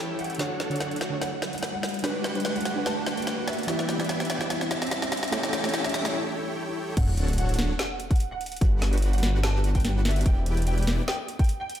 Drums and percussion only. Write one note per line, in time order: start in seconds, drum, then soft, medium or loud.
0.19 closed hi-hat soft
0.24 closed hi-hat medium
0.30 closed hi-hat soft
0.35 closed hi-hat medium
0.39 snare medium
0.39 closed hi-hat medium
0.60 snare medium
0.60 closed hi-hat medium
0.71 closed hi-hat soft
0.76 closed hi-hat medium
0.80 snare medium
0.80 closed hi-hat medium
0.91 closed hi-hat soft
0.96 closed hi-hat medium
1.01 snare medium
1.01 closed hi-hat medium
1.22 snare medium
1.22 closed hi-hat medium
1.42 snare medium
1.42 closed hi-hat medium
1.53 closed hi-hat soft
1.58 closed hi-hat medium
1.63 snare medium
1.63 closed hi-hat medium
1.83 snare medium
1.83 closed hi-hat soft
1.89 closed hi-hat medium
1.94 closed hi-hat soft
1.99 closed hi-hat medium
2.04 snare medium
2.04 closed hi-hat medium
2.24 snare medium
2.24 closed hi-hat medium
2.35 closed hi-hat soft
2.40 closed hi-hat medium
2.45 snare medium
2.45 closed hi-hat medium
2.56 closed hi-hat soft
2.61 closed hi-hat medium
2.65 snare medium
2.65 closed hi-hat medium
2.86 snare medium
2.86 closed hi-hat medium
3.06 snare medium
3.06 closed hi-hat medium
3.17 closed hi-hat medium
3.22 closed hi-hat medium
3.27 snare medium
3.27 closed hi-hat medium
3.48 snare medium
3.48 closed hi-hat soft
3.53 closed hi-hat medium
3.59 closed hi-hat soft
3.63 closed hi-hat medium
3.68 snare medium
3.68 closed hi-hat medium
3.79 snare medium
3.89 snare medium
3.89 closed hi-hat medium
4.00 snare medium
4.00 closed hi-hat soft
4.04 closed hi-hat medium
4.09 snare medium
4.09 closed hi-hat medium
4.20 snare medium
4.20 closed hi-hat medium
4.25 closed hi-hat medium
4.30 snare loud
4.30 closed hi-hat medium
4.41 snare medium
4.50 snare medium
4.50 closed hi-hat medium
4.61 snare medium
4.71 snare medium
4.71 closed hi-hat medium
4.82 snare medium
4.82 closed hi-hat medium
4.87 closed hi-hat medium
4.91 snare loud
4.91 closed hi-hat medium
5.02 snare medium
5.12 snare loud
5.12 closed hi-hat medium
5.17 closed hi-hat medium
5.23 snare medium
5.23 closed hi-hat soft
5.28 closed hi-hat medium
5.32 snare loud
5.32 closed hi-hat medium
5.43 snare medium
5.53 snare loud
5.53 closed hi-hat medium
5.64 snare medium
5.64 closed hi-hat medium
5.69 closed hi-hat medium
5.74 snare loud
5.74 closed hi-hat medium
5.85 snare medium
5.85 closed hi-hat medium
5.89 closed hi-hat medium
5.94 snare loud
6.05 snare loud
6.97 kick loud
6.97 closed hi-hat medium
6.97 crash loud
7.17 closed hi-hat medium
7.28 closed hi-hat soft
7.33 closed hi-hat medium
7.38 closed hi-hat medium
7.49 closed hi-hat medium
7.54 closed hi-hat medium
7.59 snare medium
7.79 snare loud
7.79 closed hi-hat medium
8.00 closed hi-hat medium
8.11 kick loud
8.11 closed hi-hat medium
8.15 closed hi-hat medium
8.20 closed hi-hat medium
8.41 closed hi-hat medium
8.46 closed hi-hat medium
8.52 closed hi-hat soft
8.57 closed hi-hat medium
8.61 kick loud
8.61 closed hi-hat medium
8.82 snare medium
8.82 closed hi-hat medium
8.93 closed hi-hat medium
8.98 closed hi-hat medium
9.02 closed hi-hat medium
9.13 closed hi-hat medium
9.18 closed hi-hat medium
9.23 snare medium
9.23 closed hi-hat medium
9.43 snare loud
9.43 closed hi-hat medium
9.64 closed hi-hat medium
9.75 kick medium
9.75 closed hi-hat medium
9.80 closed hi-hat medium
9.85 snare medium
9.85 closed hi-hat medium
10.05 snare medium
10.05 closed hi-hat medium
10.11 closed hi-hat medium
10.16 closed hi-hat soft
10.21 closed hi-hat medium
10.26 kick loud
10.26 closed hi-hat medium
10.46 closed hi-hat medium
10.57 closed hi-hat soft
10.62 closed hi-hat medium
10.67 closed hi-hat medium
10.78 closed hi-hat soft
10.83 closed hi-hat medium
10.87 snare medium
10.87 closed hi-hat medium
11.08 snare loud
11.08 closed hi-hat medium
11.28 closed hi-hat medium
11.39 kick loud
11.39 closed hi-hat soft
11.44 closed hi-hat medium
11.49 closed hi-hat medium
11.70 closed hi-hat soft
11.75 closed hi-hat medium